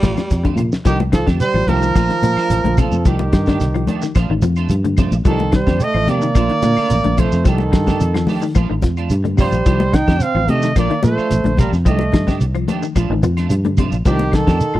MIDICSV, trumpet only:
0, 0, Header, 1, 2, 480
1, 0, Start_track
1, 0, Tempo, 550459
1, 741, Time_signature, 4, 2, 24, 8
1, 12905, End_track
2, 0, Start_track
2, 0, Title_t, "Trumpet"
2, 0, Program_c, 0, 56
2, 753, Note_on_c, 0, 67, 110
2, 858, Note_off_c, 0, 67, 0
2, 991, Note_on_c, 0, 69, 105
2, 1097, Note_off_c, 0, 69, 0
2, 1228, Note_on_c, 0, 72, 125
2, 1469, Note_on_c, 0, 70, 127
2, 1482, Note_off_c, 0, 72, 0
2, 2433, Note_on_c, 0, 69, 103
2, 2446, Note_off_c, 0, 70, 0
2, 2667, Note_off_c, 0, 69, 0
2, 2689, Note_on_c, 0, 67, 94
2, 3600, Note_off_c, 0, 67, 0
2, 4593, Note_on_c, 0, 69, 111
2, 4810, Note_off_c, 0, 69, 0
2, 4840, Note_on_c, 0, 72, 105
2, 5080, Note_on_c, 0, 75, 123
2, 5093, Note_off_c, 0, 72, 0
2, 5310, Note_off_c, 0, 75, 0
2, 5318, Note_on_c, 0, 74, 127
2, 6276, Note_on_c, 0, 72, 103
2, 6289, Note_off_c, 0, 74, 0
2, 6504, Note_off_c, 0, 72, 0
2, 6509, Note_on_c, 0, 69, 98
2, 7428, Note_off_c, 0, 69, 0
2, 8199, Note_on_c, 0, 72, 104
2, 8673, Note_on_c, 0, 79, 121
2, 8686, Note_off_c, 0, 72, 0
2, 8914, Note_on_c, 0, 77, 114
2, 8928, Note_off_c, 0, 79, 0
2, 9152, Note_on_c, 0, 75, 105
2, 9165, Note_off_c, 0, 77, 0
2, 9384, Note_off_c, 0, 75, 0
2, 9406, Note_on_c, 0, 74, 101
2, 9615, Note_off_c, 0, 74, 0
2, 9626, Note_on_c, 0, 72, 104
2, 10067, Note_off_c, 0, 72, 0
2, 10109, Note_on_c, 0, 70, 83
2, 10214, Note_off_c, 0, 70, 0
2, 10347, Note_on_c, 0, 75, 99
2, 10788, Note_off_c, 0, 75, 0
2, 12272, Note_on_c, 0, 67, 107
2, 12508, Note_on_c, 0, 69, 108
2, 12521, Note_off_c, 0, 67, 0
2, 12905, Note_off_c, 0, 69, 0
2, 12905, End_track
0, 0, End_of_file